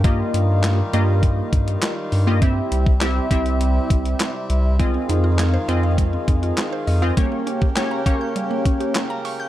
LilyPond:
<<
  \new Staff \with { instrumentName = "Synth arpeggio sound" } { \time 4/4 \key f \minor \tempo 4 = 101 r1 | r1 | aes16 c'16 ees'16 f'16 aes'16 c''16 ees''16 f''16 aes16 c'16 ees'16 f'16 r16 c''16 ees''16 f''16 | g16 bes16 des'16 g'16 g''16 bes''16 des'''16 g'''16 g16 bes16 des'16 g'16 r16 bes''16 des'''16 g'''16 | }
  \new Staff \with { instrumentName = "Analog polysynth" } { \time 4/4 \key f \minor <bes f' g' ees''>4~ <bes f' g' ees''>16 r16 <bes f' g' ees''>4.~ <bes f' g' ees''>16 r8 <bes f' g' ees''>16 | <c' e' g' e''>8. r16 <c' e' g' e''>8 <c' e' g' e''>4.~ <c' e' g' e''>16 r8. | <c' f' aes' ees''>4~ <c' f' aes' ees''>16 r16 <c' f' aes' ees''>4.~ <c' f' aes' ees''>16 r8 <c' f' aes' ees''>16 | <bes des' g' des''>8. r16 <bes des' g' des''>8 <bes des' g' des''>4.~ <bes des' g' des''>16 r8. | }
  \new Staff \with { instrumentName = "Harmonium" } { \clef bass \time 4/4 \key f \minor << { <ees f'>1 | <c e'>1 | <ees f'>1 | <des g'>1 | } \\ { g1~ | g1 | aes1 | bes1 | } >> }
  \new Staff \with { instrumentName = "Sub bass" } { \clef bass \time 4/4 \key f \minor g,8 g,4 g,4 g,8 r8 g,8~ | g,8 c,4 c,4 c,8 r8 c,8~ | c,8 f,4 f,4 f,8 r8 f,8 | r1 | }
  \new DrumStaff \with { instrumentName = "Drums" } \drummode { \time 4/4 <hh bd>8 hh8 <hc hh sn>8 hh8 <hh bd>8 <hh bd>16 hh16 <hc hh sn>8 hho8 | <hh bd>8 hh16 bd16 <hc hh sn>8 <hh bd>16 hh16 hh8 <hh bd>16 hh16 <hc hh sn>8 hh8 | <hh bd>8 hh8 <hc hh sn>8 hh8 <hh bd>8 <hh bd>16 hh16 <hc hh sn>8 hho8 | <hh bd>8 hh16 bd16 <hc hh sn>8 <hh bd>8 hh8 <hh bd>16 hh16 <hc hh sn>8 hho8 | }
>>